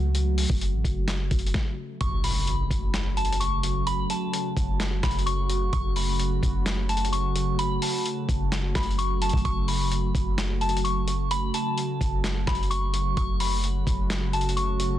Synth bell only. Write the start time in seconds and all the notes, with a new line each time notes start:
2.01 C#6
2.24 B5
3.17 A5
3.40 C#6
3.87 B5
4.10 A5
5.03 B5
5.26 C#6
5.73 C#6
5.96 B5
6.89 A5
7.12 C#6
7.59 B5
7.82 A5
8.75 B5
8.98 C#6
9.22 A5
9.45 C#6
9.68 B5
10.61 A5
10.84 C#6
11.31 B5
11.54 A5
12.47 B5
12.71 C#6
13.17 C#6
13.40 B5
14.33 A5
14.57 C#6